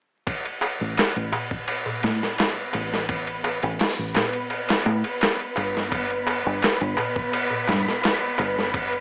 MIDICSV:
0, 0, Header, 1, 5, 480
1, 0, Start_track
1, 0, Tempo, 705882
1, 182, Time_signature, 4, 2, 24, 8
1, 6122, End_track
2, 0, Start_track
2, 0, Title_t, "Synth texture"
2, 0, Program_c, 0, 99
2, 176, Note_on_c, 0, 71, 78
2, 179, Note_on_c, 0, 59, 83
2, 6122, Note_off_c, 0, 59, 0
2, 6122, Note_off_c, 0, 71, 0
2, 6122, End_track
3, 0, Start_track
3, 0, Title_t, "Fingered electric bass"
3, 0, Program_c, 1, 33
3, 551, Note_on_c, 1, 33, 89
3, 650, Note_off_c, 1, 33, 0
3, 790, Note_on_c, 1, 33, 89
3, 890, Note_off_c, 1, 33, 0
3, 1387, Note_on_c, 1, 45, 88
3, 1495, Note_off_c, 1, 45, 0
3, 1866, Note_on_c, 1, 33, 76
3, 2446, Note_off_c, 1, 33, 0
3, 2471, Note_on_c, 1, 33, 93
3, 2570, Note_off_c, 1, 33, 0
3, 2713, Note_on_c, 1, 33, 79
3, 2811, Note_off_c, 1, 33, 0
3, 3305, Note_on_c, 1, 45, 92
3, 3414, Note_off_c, 1, 45, 0
3, 3788, Note_on_c, 1, 31, 78
3, 4366, Note_off_c, 1, 31, 0
3, 4394, Note_on_c, 1, 31, 92
3, 4492, Note_off_c, 1, 31, 0
3, 4632, Note_on_c, 1, 31, 93
3, 4731, Note_off_c, 1, 31, 0
3, 5225, Note_on_c, 1, 43, 89
3, 5334, Note_off_c, 1, 43, 0
3, 5705, Note_on_c, 1, 31, 82
3, 6122, Note_off_c, 1, 31, 0
3, 6122, End_track
4, 0, Start_track
4, 0, Title_t, "Darbuka"
4, 180, Note_on_c, 9, 63, 43
4, 248, Note_off_c, 9, 63, 0
4, 303, Note_on_c, 9, 63, 26
4, 371, Note_off_c, 9, 63, 0
4, 416, Note_on_c, 9, 63, 86
4, 484, Note_off_c, 9, 63, 0
4, 552, Note_on_c, 9, 63, 36
4, 620, Note_off_c, 9, 63, 0
4, 665, Note_on_c, 9, 63, 50
4, 733, Note_off_c, 9, 63, 0
4, 784, Note_on_c, 9, 63, 24
4, 852, Note_off_c, 9, 63, 0
4, 897, Note_on_c, 9, 64, 75
4, 902, Note_on_c, 9, 63, 94
4, 965, Note_off_c, 9, 64, 0
4, 970, Note_off_c, 9, 63, 0
4, 1017, Note_on_c, 9, 63, 35
4, 1085, Note_off_c, 9, 63, 0
4, 1146, Note_on_c, 9, 63, 48
4, 1214, Note_off_c, 9, 63, 0
4, 1265, Note_on_c, 9, 63, 26
4, 1265, Note_on_c, 9, 64, 89
4, 1333, Note_off_c, 9, 63, 0
4, 1333, Note_off_c, 9, 64, 0
4, 1384, Note_on_c, 9, 63, 80
4, 1452, Note_off_c, 9, 63, 0
4, 1515, Note_on_c, 9, 63, 36
4, 1583, Note_off_c, 9, 63, 0
4, 1623, Note_on_c, 9, 63, 45
4, 1691, Note_off_c, 9, 63, 0
4, 1749, Note_on_c, 9, 63, 24
4, 1817, Note_off_c, 9, 63, 0
4, 1857, Note_on_c, 9, 63, 74
4, 1925, Note_off_c, 9, 63, 0
4, 1988, Note_on_c, 9, 63, 37
4, 2056, Note_off_c, 9, 63, 0
4, 2099, Note_on_c, 9, 63, 45
4, 2167, Note_off_c, 9, 63, 0
4, 2221, Note_on_c, 9, 63, 26
4, 2289, Note_off_c, 9, 63, 0
4, 2341, Note_on_c, 9, 63, 86
4, 2409, Note_off_c, 9, 63, 0
4, 2466, Note_on_c, 9, 63, 36
4, 2534, Note_off_c, 9, 63, 0
4, 2580, Note_on_c, 9, 63, 50
4, 2648, Note_off_c, 9, 63, 0
4, 2707, Note_on_c, 9, 63, 23
4, 2775, Note_off_c, 9, 63, 0
4, 2819, Note_on_c, 9, 63, 79
4, 2820, Note_on_c, 9, 64, 75
4, 2887, Note_off_c, 9, 63, 0
4, 2888, Note_off_c, 9, 64, 0
4, 2947, Note_on_c, 9, 63, 35
4, 3015, Note_off_c, 9, 63, 0
4, 3065, Note_on_c, 9, 63, 50
4, 3133, Note_off_c, 9, 63, 0
4, 3187, Note_on_c, 9, 63, 26
4, 3255, Note_off_c, 9, 63, 0
4, 3306, Note_on_c, 9, 63, 99
4, 3374, Note_off_c, 9, 63, 0
4, 3426, Note_on_c, 9, 63, 39
4, 3494, Note_off_c, 9, 63, 0
4, 3542, Note_on_c, 9, 63, 46
4, 3610, Note_off_c, 9, 63, 0
4, 3665, Note_on_c, 9, 63, 26
4, 3733, Note_off_c, 9, 63, 0
4, 3779, Note_on_c, 9, 63, 84
4, 3847, Note_off_c, 9, 63, 0
4, 3906, Note_on_c, 9, 63, 39
4, 3974, Note_off_c, 9, 63, 0
4, 4020, Note_on_c, 9, 63, 51
4, 4088, Note_off_c, 9, 63, 0
4, 4151, Note_on_c, 9, 63, 27
4, 4219, Note_off_c, 9, 63, 0
4, 4261, Note_on_c, 9, 63, 91
4, 4329, Note_off_c, 9, 63, 0
4, 4386, Note_on_c, 9, 63, 36
4, 4454, Note_off_c, 9, 63, 0
4, 4503, Note_on_c, 9, 63, 48
4, 4571, Note_off_c, 9, 63, 0
4, 4628, Note_on_c, 9, 63, 28
4, 4696, Note_off_c, 9, 63, 0
4, 4739, Note_on_c, 9, 63, 94
4, 4740, Note_on_c, 9, 64, 73
4, 4807, Note_off_c, 9, 63, 0
4, 4808, Note_off_c, 9, 64, 0
4, 4862, Note_on_c, 9, 63, 33
4, 4930, Note_off_c, 9, 63, 0
4, 4978, Note_on_c, 9, 63, 52
4, 5046, Note_off_c, 9, 63, 0
4, 5103, Note_on_c, 9, 64, 74
4, 5106, Note_on_c, 9, 63, 23
4, 5171, Note_off_c, 9, 64, 0
4, 5174, Note_off_c, 9, 63, 0
4, 5219, Note_on_c, 9, 63, 88
4, 5287, Note_off_c, 9, 63, 0
4, 5341, Note_on_c, 9, 63, 40
4, 5409, Note_off_c, 9, 63, 0
4, 5452, Note_on_c, 9, 63, 49
4, 5520, Note_off_c, 9, 63, 0
4, 5582, Note_on_c, 9, 63, 30
4, 5650, Note_off_c, 9, 63, 0
4, 5700, Note_on_c, 9, 63, 97
4, 5768, Note_off_c, 9, 63, 0
4, 5824, Note_on_c, 9, 63, 38
4, 5892, Note_off_c, 9, 63, 0
4, 5939, Note_on_c, 9, 63, 52
4, 6007, Note_off_c, 9, 63, 0
4, 6065, Note_on_c, 9, 63, 27
4, 6122, Note_off_c, 9, 63, 0
4, 6122, End_track
5, 0, Start_track
5, 0, Title_t, "Drums"
5, 183, Note_on_c, 9, 36, 105
5, 183, Note_on_c, 9, 51, 81
5, 251, Note_off_c, 9, 36, 0
5, 251, Note_off_c, 9, 51, 0
5, 309, Note_on_c, 9, 51, 39
5, 377, Note_off_c, 9, 51, 0
5, 422, Note_on_c, 9, 51, 65
5, 490, Note_off_c, 9, 51, 0
5, 662, Note_on_c, 9, 51, 80
5, 674, Note_on_c, 9, 38, 109
5, 730, Note_off_c, 9, 51, 0
5, 742, Note_off_c, 9, 38, 0
5, 789, Note_on_c, 9, 51, 41
5, 857, Note_off_c, 9, 51, 0
5, 903, Note_on_c, 9, 51, 58
5, 971, Note_off_c, 9, 51, 0
5, 1028, Note_on_c, 9, 36, 97
5, 1096, Note_off_c, 9, 36, 0
5, 1140, Note_on_c, 9, 51, 84
5, 1208, Note_off_c, 9, 51, 0
5, 1381, Note_on_c, 9, 51, 59
5, 1393, Note_on_c, 9, 38, 36
5, 1449, Note_off_c, 9, 51, 0
5, 1461, Note_off_c, 9, 38, 0
5, 1518, Note_on_c, 9, 38, 36
5, 1586, Note_off_c, 9, 38, 0
5, 1620, Note_on_c, 9, 51, 77
5, 1632, Note_on_c, 9, 38, 102
5, 1688, Note_off_c, 9, 51, 0
5, 1700, Note_off_c, 9, 38, 0
5, 1860, Note_on_c, 9, 51, 63
5, 1928, Note_off_c, 9, 51, 0
5, 1997, Note_on_c, 9, 38, 39
5, 2065, Note_off_c, 9, 38, 0
5, 2100, Note_on_c, 9, 51, 80
5, 2101, Note_on_c, 9, 36, 106
5, 2168, Note_off_c, 9, 51, 0
5, 2169, Note_off_c, 9, 36, 0
5, 2226, Note_on_c, 9, 51, 42
5, 2294, Note_off_c, 9, 51, 0
5, 2341, Note_on_c, 9, 51, 68
5, 2409, Note_off_c, 9, 51, 0
5, 2467, Note_on_c, 9, 51, 42
5, 2535, Note_off_c, 9, 51, 0
5, 2579, Note_on_c, 9, 46, 80
5, 2590, Note_on_c, 9, 38, 108
5, 2647, Note_off_c, 9, 46, 0
5, 2658, Note_off_c, 9, 38, 0
5, 2820, Note_on_c, 9, 51, 67
5, 2832, Note_on_c, 9, 38, 90
5, 2888, Note_off_c, 9, 51, 0
5, 2900, Note_off_c, 9, 38, 0
5, 2946, Note_on_c, 9, 51, 39
5, 3014, Note_off_c, 9, 51, 0
5, 3060, Note_on_c, 9, 51, 60
5, 3128, Note_off_c, 9, 51, 0
5, 3187, Note_on_c, 9, 51, 76
5, 3198, Note_on_c, 9, 38, 99
5, 3255, Note_off_c, 9, 51, 0
5, 3266, Note_off_c, 9, 38, 0
5, 3302, Note_on_c, 9, 51, 35
5, 3370, Note_off_c, 9, 51, 0
5, 3429, Note_on_c, 9, 51, 51
5, 3497, Note_off_c, 9, 51, 0
5, 3543, Note_on_c, 9, 51, 77
5, 3555, Note_on_c, 9, 38, 105
5, 3611, Note_off_c, 9, 51, 0
5, 3623, Note_off_c, 9, 38, 0
5, 3671, Note_on_c, 9, 51, 36
5, 3739, Note_off_c, 9, 51, 0
5, 3785, Note_on_c, 9, 51, 64
5, 3853, Note_off_c, 9, 51, 0
5, 3922, Note_on_c, 9, 38, 34
5, 3990, Note_off_c, 9, 38, 0
5, 4024, Note_on_c, 9, 36, 106
5, 4024, Note_on_c, 9, 51, 84
5, 4092, Note_off_c, 9, 36, 0
5, 4092, Note_off_c, 9, 51, 0
5, 4150, Note_on_c, 9, 51, 40
5, 4218, Note_off_c, 9, 51, 0
5, 4265, Note_on_c, 9, 51, 67
5, 4333, Note_off_c, 9, 51, 0
5, 4503, Note_on_c, 9, 51, 84
5, 4515, Note_on_c, 9, 38, 113
5, 4571, Note_off_c, 9, 51, 0
5, 4583, Note_off_c, 9, 38, 0
5, 4631, Note_on_c, 9, 51, 37
5, 4699, Note_off_c, 9, 51, 0
5, 4745, Note_on_c, 9, 51, 63
5, 4813, Note_off_c, 9, 51, 0
5, 4870, Note_on_c, 9, 36, 94
5, 4938, Note_off_c, 9, 36, 0
5, 4986, Note_on_c, 9, 51, 87
5, 5054, Note_off_c, 9, 51, 0
5, 5226, Note_on_c, 9, 51, 64
5, 5238, Note_on_c, 9, 38, 40
5, 5294, Note_off_c, 9, 51, 0
5, 5306, Note_off_c, 9, 38, 0
5, 5361, Note_on_c, 9, 38, 34
5, 5429, Note_off_c, 9, 38, 0
5, 5463, Note_on_c, 9, 51, 75
5, 5475, Note_on_c, 9, 38, 102
5, 5531, Note_off_c, 9, 51, 0
5, 5543, Note_off_c, 9, 38, 0
5, 5703, Note_on_c, 9, 51, 61
5, 5771, Note_off_c, 9, 51, 0
5, 5840, Note_on_c, 9, 38, 40
5, 5908, Note_off_c, 9, 38, 0
5, 5944, Note_on_c, 9, 36, 106
5, 5944, Note_on_c, 9, 51, 83
5, 6012, Note_off_c, 9, 36, 0
5, 6012, Note_off_c, 9, 51, 0
5, 6070, Note_on_c, 9, 51, 39
5, 6122, Note_off_c, 9, 51, 0
5, 6122, End_track
0, 0, End_of_file